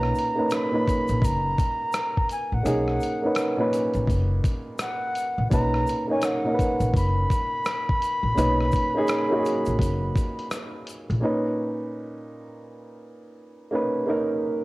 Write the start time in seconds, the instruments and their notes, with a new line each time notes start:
Already playing: upright bass B1, upright piano A#2 C#4 D#4 B4, flute A#5
0.03 cross-stick
0.15 closed hi-hat, shaker
0.35 upright piano A#3 C#4 D#4 B4
0.48 flute A#5, closed hi-hat, shaker
0.52 flute B5, cross-stick
0.71 upright piano A#2 C#4 D#4 B4
0.88 kick, closed hi-hat, shaker
1.08 upright bass A#1, closed hi-hat, shaker
1.22 upright bass F#1, flute A#5, kick, closed hi-hat, shaker
1.58 kick, closed hi-hat, shaker
1.93 cross-stick, closed hi-hat, shaker
2.17 kick
2.29 flute G#5, closed hi-hat, shaker
2.52 upright bass A#1, flute F#5
2.63 upright bass B1, upright piano A#3 C#4 D#4 G#4, closed hi-hat, shaker
2.88 cross-stick
3.00 closed hi-hat, shaker
3.22 upright piano A#3 C#4 D#4 B4
3.35 cross-stick, closed hi-hat, shaker
3.57 upright piano A#2 C#4 D#4 B4
3.73 closed hi-hat, shaker
3.94 upright bass A#1, closed hi-hat, shaker
4.07 upright bass F#1, kick, closed hi-hat, shaker
4.44 kick, closed hi-hat, shaker
4.79 flute F#5, cross-stick, closed hi-hat, shaker
5.15 closed hi-hat, shaker
5.38 upright bass A#1
5.50 upright bass B1, upright piano A#2 C#4 D#4 B4, flute A#5, kick, closed hi-hat, shaker
5.74 cross-stick
5.87 closed hi-hat, shaker
6.07 upright piano A#3 C#4 D#4 C#5, flute G#5
6.22 flute F#5, cross-stick, closed hi-hat, shaker
6.44 upright piano A#2 C#4 D#4
6.48 upright piano A#4
6.54 upright piano B4
6.59 kick, closed hi-hat, shaker
6.80 upright bass A#1, closed hi-hat, shaker
6.94 upright bass F#1, flute B5, kick, closed hi-hat, shaker
7.30 kick, closed hi-hat, shaker
7.65 cross-stick, closed hi-hat, shaker
7.89 kick
8.02 closed hi-hat, shaker
8.23 upright bass A#1
8.35 upright bass B1, upright piano A#2 C#4 D#4 B4, closed hi-hat, shaker
8.61 cross-stick
8.72 kick, shaker
8.76 closed hi-hat
8.94 upright piano A#3 C#4 D#4 G#4
9.07 cross-stick, closed hi-hat, shaker
9.29 upright piano A#3 C#4 D#4 F#4
9.39 upright piano G#4
9.45 closed hi-hat, shaker
9.66 upright bass A#1, closed hi-hat, shaker
9.79 upright bass F#1, kick, closed hi-hat, shaker
10.16 kick, closed hi-hat, shaker
10.39 closed hi-hat
10.51 cross-stick, closed hi-hat, shaker
10.87 closed hi-hat, shaker
11.10 upright bass A#1, closed hi-hat
11.21 upright piano A#2 C#4 D#4
11.25 upright piano B4
13.71 upright piano A#3 C#4 D#4
13.75 upright piano B4
14.06 upright piano A#3 C#4 D#4 A#4